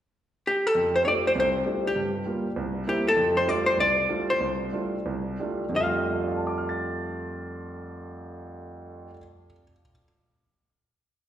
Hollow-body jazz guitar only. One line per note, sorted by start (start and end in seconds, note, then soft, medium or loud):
0.47 0.67 G4 medium
0.67 0.96 A4 medium
0.96 1.03 C5 medium
1.05 1.07 C#5 medium
1.05 1.13 D5 medium
1.27 1.32 C5 medium
1.40 1.87 C5 medium
1.87 2.14 G4 medium
2.89 3.05 G4 medium
3.08 3.35 A4 medium
3.37 3.49 C5 medium
3.49 3.66 D5 loud
3.66 3.79 C5 medium
3.80 4.26 D5 medium
4.30 4.59 C5 medium
5.76 9.09 F5 medium